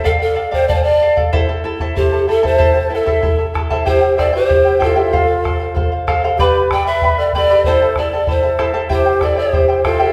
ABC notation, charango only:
X:1
M:2/4
L:1/16
Q:1/4=95
K:Am
V:1 name="Charango"
[Adf] [df] [Adf] [Adf] [Adf] [df] [Adf] [Adf] | [EAcea] [EAa] [EAea] [EAcea] [EAea] [EAa] [EAea] [EAcea] | [EAcea] [EAa] [EAea] [EAcea] [EAea] [EAa] [EAea] [EAcea] | [EGceg] [Ecg] [Eceg] [Ecg] [Eceg] [Ecg] [EGceg] [EGceg] |
[Acf] [cf] [Acf] [cf] [Acf] [cf] [Acf] [Acf] | [GBdgb] [Bdb] [Bdgb] [Bdb] [Bdgb] [Bdb] [GBdgb] [GBdgb] | [EAcea] [EAa] [EAea] [EAa] [EAea] [EAa] [EAcea] [EAcea] | [EGceg] [Ecg] [Eceg] [Ecg] [Eceg] [Ecg] [EGceg] [EGceg] |]